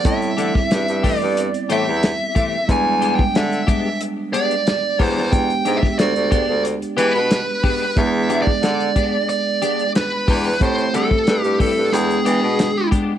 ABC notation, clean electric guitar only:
X:1
M:4/4
L:1/8
Q:1/4=91
K:Ephr
V:1 name="Clean electric guitar"
z [E,A,CG] z [E,A,CG] z [E,A,CG] z [E,A,CG] | z [^G,B,D=G] z [^G,B,D=G] z [^G,B,D=G] z [^G,B,D=G] | z [^G,B,D=G] z [^G,B,D=G] z [^G,B,D=G] z [^G,B,D=G] | z [^G,B,D=G] z [^G,B,D=G] z [^G,B,D=G] z [^G,B,D=G] |
z [G,CEG] z [G,CEG] z [^G,B,D=G] z [^G,B,D=G] |]